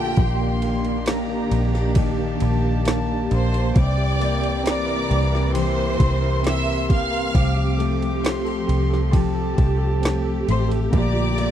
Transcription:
Already playing: A#1 A#2 D3 F3 A3 A#3 D4 F4 G4 A4 G5 A5
0.17 A#1 A#2 D#3 A#3 D4 G4 C6, kick, ride
0.41 A#3
0.62 A#3, ride
0.85 A#3, ride
1.06 A#3 G4 A#5, snare, ride
1.29 A#3
1.51 A#1 A#3 C4, ride
1.74 A#3 D4, snare
1.95 D#3 G4 A5, kick, ride
2.19 A#3
2.40 A#1 A#3 G4, ride
2.65 A#3
2.85 A#3 D4, snare, ride
3.09 A#3
3.31 A#1 A#3 C5 C6, ride
3.53 A#3, ride
3.75 C2 C3 E3 A#3 C4 D5 G5 D6, kick, ride
3.98 G4
4.20 A#3 A#4, ride
4.42 G4, ride
4.64 C4 G4 D5 A#5 D6, snare, ride
4.87 A#4
5.09 C2 C4 G4, ride
5.32 A#4, snare
5.53 E3 G4 C5 C6, ride
5.76 A#4
5.99 C2 G4, kick, ride
6.21 A#4
6.43 C4 E5 E6, snare, ride
6.66 A#4
6.89 A#3 G4 F5 F6, kick, ride
7.11 A#4, ride
7.34 C2 C3 F3 A3 C4 G4 D6, kick, ride
7.57 G4
7.78 A3 A4, ride
8.01 G4, ride
8.23 C4 F4 C6, snare, ride
8.45 G4 A4
8.67 C2 C4 G4, ride
8.89 A4
8.93 snare
9.12 F3 G4 A5, kick, ride
9.35 A4
9.56 C2 G4, kick, ride
9.78 A4
10.02 C4, snare, ride
10.24 A4
10.46 A1 A3 G4 C5 C6, ride
10.69 A4, ride
10.91 A#1 A#2 D3 A#3 A#5, kick, ride
10.95 D5 D6
11.14 F4
11.36 A3 A#3, ride

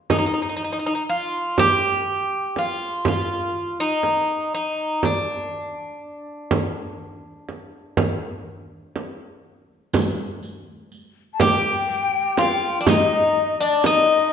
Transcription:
0.10 D#4, frame drum
0.18 D#4
0.26 D#4
0.34 D#4
0.42 D#4
0.49 D#4
0.56 D#4
0.64 D#4
0.72 D#4
0.79 D#4
0.86 D#4
0.95 D#4
1.10 F4
1.58 G4, frame drum
2.56 F4, frame drum
3.05 F4, frame drum
3.80 D#4
4.03 frame drum
4.54 D#4
5.03 D4, frame drum
6.51 frame drum
7.49 frame drum
7.97 frame drum
8.96 frame drum
9.93 riq, frame drum
10.43 riq
10.92 riq
11.34 A5
11.40 G4 G5, riq, frame drum
11.89 riq
12.37 F4, riq, frame drum
12.81 D4
12.86 D#4 D#5, riq, frame drum
13.60 D4 D5
13.84 D#4 D#5, riq, frame drum

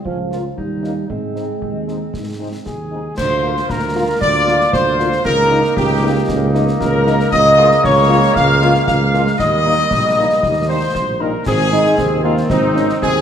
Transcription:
0.05 C#2 F3 C#4, concert bass drum
0.31 A#3 C#4 F4 A#4, snare
0.57 D#2 G3 D#4, concert bass drum
0.83 A#3 C#4 D#4 A#4, snare
1.10 G#2 G#3 C4, concert bass drum
1.35 G#3 C4 D#4 C5, snare
1.62 D#2, concert bass drum
1.87 G#3 C4 D#4 C5, snare
2.14 G#2, concert bass drum, snare
2.39 G#3 C4 D#4 C5
2.64 D#2 G#4 G#5, concert bass drum, snare
2.91 G#3 C4 D#4 C5
3.17 D2 A#3 F4 C5 C6, concert bass drum, snare, crash
3.43 A#3 F4
3.57 snare
3.69 D2 A#4 A#5, concert bass drum, snare
3.95 A#3 F4
4.20 D2 D5 D6, concert bass drum, snare
4.47 A#3 F4, snare
4.61 snare
4.73 D2 C5 C6, concert bass drum, snare
4.99 A#3 F4, snare
5.12 snare
5.25 C#2 A#3 D#4 A#4 A#5, concert bass drum, snare, crash
5.51 A#3 D#4
5.64 snare
5.77 C#2 G4 G5, concert bass drum, snare
6.03 A#3 D#4
6.28 C#2, concert bass drum, snare
6.55 A#3 D#4, snare
6.68 snare
6.80 C#2 A#4 A#5, concert bass drum, snare
7.07 A#3 D#4, snare
7.20 snare
7.31 C#2 G#3 A#3 D#5 D#6, concert bass drum, snare, crash
7.58 G#3 A#3 F4
7.71 snare
7.84 C#2 C#5 C#6, concert bass drum, snare
8.10 G#3 A#3 F4
8.35 C#2 F5 F6, concert bass drum, snare
8.62 G#3 A#3 F4, snare
8.75 snare
8.86 C#2 F5 F6, concert bass drum, snare
9.14 G#3 A#3 F4, snare
9.27 snare
9.38 D#2 G3 A#3 D#5 D#6, concert bass drum, snare, crash
9.66 G3 A#3 D#4
9.78 snare
9.91 A#1, concert bass drum, snare
10.17 G3 A#3 D#4
10.43 D#2, concert bass drum, snare
10.68 G3 A#3 D#4 C5 C6
10.95 A#1, concert bass drum, snare
11.20 G3 A#3 D#4 A#4 A#5
11.46 G#1 D#3 C4 G#4 G#5, concert bass drum, snare, crash
11.72 G#3 C4 D#4, snare
11.85 snare
11.98 D#2 C4, concert bass drum, snare
12.24 G#3 A#3 C4 D#4 F4 F5
12.37 snare
12.49 G#1 C4 D#4 D#5, concert bass drum, snare
12.76 G#3 C4 C#4 D#4, snare
12.89 snare
13.01 D#2 C4 G#4 G#5, concert bass drum, snare
13.15 snare

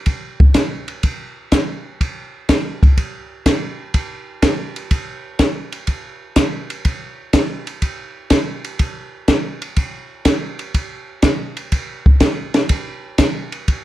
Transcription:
0.06 kick, ride
0.40 kick
0.54 kick, snare, hi-hat pedal, ride
0.88 ride
1.03 kick, ride
1.52 kick, snare, hi-hat pedal, ride
2.01 kick, ride
2.49 kick, snare, hi-hat pedal, ride
2.83 kick, ride
2.97 kick, ride
3.46 kick, snare, hi-hat pedal, ride
3.94 kick, ride
4.42 kick, snare, hi-hat pedal, ride
4.76 ride
4.91 kick, ride
5.39 kick, snare, hi-hat pedal, ride
5.72 ride
5.87 kick, ride
6.36 kick, snare, hi-hat pedal, ride
6.70 ride
6.85 kick, ride
7.33 kick, snare, hi-hat pedal, ride
7.67 ride
7.82 kick, ride
8.30 kick, snare, hi-hat pedal, ride
8.64 ride
8.79 kick, ride
9.28 kick, snare, hi-hat pedal, ride
9.62 ride
9.76 kick, ride
10.25 kick, snare, hi-hat pedal, ride
10.59 ride
10.74 kick, ride
11.22 kick, snare, hi-hat pedal, ride
11.57 ride
11.72 kick, ride
12.06 kick
12.20 kick, snare, hi-hat pedal, ride
12.54 snare, ride
12.69 kick, ride
13.18 kick, snare, hi-hat pedal, ride
13.52 ride
13.68 kick, ride

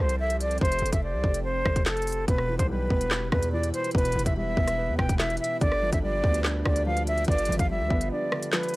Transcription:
Already playing: F3 C4 G4 A4
0.00 C2 C5
0.09 closed hi-hat
0.20 E5
0.30 closed hi-hat
0.40 D5, closed hi-hat
0.51 closed hi-hat
0.58 F1 C5, kick, closed hi-hat
0.65 closed hi-hat
0.72 closed hi-hat
0.79 F1, closed hi-hat
0.86 closed hi-hat
0.93 F1 E5, kick, closed hi-hat
1.03 D5
1.13 C2
1.24 F1, kick
1.34 closed hi-hat
1.44 C5
1.66 F1, kick, cross-stick
1.76 kick, closed hi-hat
1.86 A4, snare, clap, closed hi-hat
1.97 closed hi-hat
2.02 closed hi-hat
2.07 closed hi-hat, open hi-hat
2.12 closed hi-hat
2.28 E1 B2 E3 B3 B4, kick, closed hi-hat
2.38 cross-stick
2.49 E3
2.58 B1 C5, kick, closed hi-hat
2.70 G3 B4
2.90 E1 B3, kick
3.01 closed hi-hat
3.11 B4, snare, clap
3.32 E2 B2 B4, kick, cross-stick
3.43 closed hi-hat
3.52 E3 D5
3.63 closed hi-hat
3.74 C5, closed hi-hat
3.84 closed hi-hat
3.91 E1 B2, kick, closed hi-hat
3.95 B4, closed hi-hat
4.05 closed hi-hat
4.12 E1 E3, closed hi-hat
4.19 closed hi-hat
4.26 E1 E5, kick, closed hi-hat
4.36 G3 E5
4.57 E1 B3, kick
4.68 cross-stick, closed hi-hat
4.78 B4
4.88 E2
4.98 E1 B2 G5, kick, cross-stick
5.09 kick, closed hi-hat
5.19 E3 E5, snare, clap, closed hi-hat
5.30 closed hi-hat
5.37 E5, closed hi-hat
5.44 closed hi-hat
5.61 G1 D3 F3 D4 G4 B4 D5, kick, closed hi-hat
5.72 cross-stick
5.82 F3
5.93 G1 E5, kick, closed hi-hat
6.03 G3 D5
6.24 D2 B3, kick
6.34 closed hi-hat
6.45 D4, snare, clap
6.65 D2 D3 D5, kick, cross-stick
6.76 closed hi-hat
6.86 F3 F5
6.97 closed hi-hat
7.07 E5, closed hi-hat
7.18 closed hi-hat
7.25 G1 D3, kick, closed hi-hat
7.29 D5, closed hi-hat
7.38 closed hi-hat
7.45 G1 F3, closed hi-hat
7.52 closed hi-hat
7.59 G1 F5, kick, closed hi-hat
7.70 G3 E5
7.80 D2
7.90 G1 B3, kick
8.01 closed hi-hat
8.11 D4 D5
8.32 D3, cross-stick
8.43 closed hi-hat
8.53 F3 B4, snare, clap, closed hi-hat
8.63 closed hi-hat
8.69 closed hi-hat

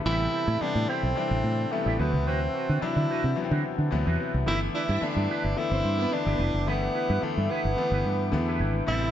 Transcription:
Already playing: E5
0.05 A1 C3 E3 G3 B3 E4 G4 A4 C5 G5 A5
0.19 muted clean electric guitar stroke
0.32 E4 G4 C5
0.47 A2 E4 G4 D5
0.61 C3 E3 G3 B3 D4, muted fingered electric bass stroke
0.74 A2, muted clean electric guitar stroke
0.88 C4 E4 G4 C5
1.03 B1, muted clean electric guitar stroke
1.16 C3 E3 G3 D4, muted clean electric guitar stroke
1.31 A1, muted clean electric guitar stroke
1.44 A2
1.59 muted clean electric guitar stroke
1.71 C3 E3 G3 A3 B3, muted clean electric guitar stroke
1.86 A1 E4 G4 D5
1.99 D2 C3 E3 F#3 B3 C4 F#4 B4 F#5
2.13 C#2, muted clean electric guitar stroke
2.27 D2 C4 F#4 B4
2.41 muted clean electric guitar stroke
2.54 C4 F#4 B4
2.69 D3 C4 F#4 B4
2.81 C3 E3 F#3 D4 E4, muted fingered electric bass stroke
2.96 D3, muted clean electric guitar stroke
3.10 C4 F#4 B4
3.24 C3, muted clean electric guitar stroke
3.36 C3 E3 F#3 B3, muted clean electric guitar stroke
3.44 C4
3.51 D3 C4 F#4 B4
3.64 muted clean electric guitar stroke
3.78 D3, muted clean electric guitar stroke
3.91 D2 C3 E3 F#3 B3, muted clean electric guitar stroke
4.06 E2 C4 F#4 B4
4.19 C4 F#4 B4
4.33 C2, muted clean electric guitar stroke
4.46 G1 D3 E3 A3 B3 E4 G4 B4 G5 D6
4.61 muted clean electric guitar stroke
4.74 D4 E4 G4 B4 D5
4.89 G2 E4 G4 D5 E5
5.01 D3 E3 A3 B3 D4, muted fingered electric bass stroke
5.17 G2, muted clean electric guitar stroke
5.30 E4 G4 B4
5.44 G1, muted clean electric guitar stroke
5.57 D3 E3 A3 B3 E4, muted clean electric guitar stroke
5.71 G1 C4 C5, muted clean electric guitar stroke
5.85 G2
5.99 B3 B4, muted clean electric guitar stroke
6.11 D3 E3 A3 D4
6.26 G1 E4 G4 D5
6.39 F1 E4 G4 B4
6.54 F#1, muted clean electric guitar stroke
6.66 G1 D3 E3 A3 B3 E4 G4 B4
6.82 muted clean electric guitar stroke
6.95 E4 G4 B4
7.09 G2 E4 G4 B4
7.22 D3 E3 A3 B3, muted fingered electric bass stroke
7.38 G2, muted clean electric guitar stroke
7.50 B3 E4 G4 B4
7.65 G1, muted clean electric guitar stroke
7.77 D3 E3 A3 B3, muted clean electric guitar stroke
7.92 G1 E4 G4 B4
8.05 G2, muted clean electric guitar stroke
8.20 muted clean electric guitar stroke
8.32 E2 D3 E3 A3 B3, muted clean electric guitar stroke
8.48 E4 G4 B4
8.60 G#1 E4 G4 B4
8.75 muted clean electric guitar stroke
8.87 A1 C3 E3 G3 B3 C4 E4 G4 A4 E5 A5
9.02 muted clean electric guitar stroke

